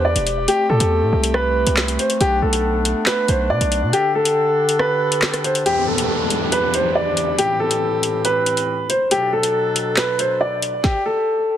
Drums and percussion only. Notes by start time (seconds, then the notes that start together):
0.16 closed hi-hat
0.27 closed hi-hat
0.48 closed hi-hat
0.80 closed hi-hat
1.24 closed hi-hat
1.34 cross-stick
1.67 closed hi-hat
1.77 snare, clap
1.88 closed hi-hat
1.99 closed hi-hat
2.10 closed hi-hat
2.21 closed hi-hat
2.53 closed hi-hat
2.85 closed hi-hat
3.06 snare, clap, closed hi-hat
3.28 closed hi-hat
3.61 closed hi-hat
3.72 closed hi-hat
3.93 closed hi-hat
4.25 closed hi-hat
4.69 closed hi-hat
4.79 cross-stick
5.12 closed hi-hat
5.22 snare, clap
5.33 cross-stick, closed hi-hat
5.44 closed hi-hat
5.55 closed hi-hat
5.66 closed hi-hat
5.98 closed hi-hat
6.30 closed hi-hat
6.52 closed hi-hat
6.74 closed hi-hat
7.17 closed hi-hat
7.39 closed hi-hat
7.71 closed hi-hat
8.03 closed hi-hat
8.25 closed hi-hat
8.46 closed hi-hat
8.57 closed hi-hat
8.90 closed hi-hat
9.11 closed hi-hat
9.43 closed hi-hat
9.76 closed hi-hat
9.97 snare, clap, closed hi-hat
10.19 closed hi-hat
10.62 closed hi-hat
10.84 kick, snare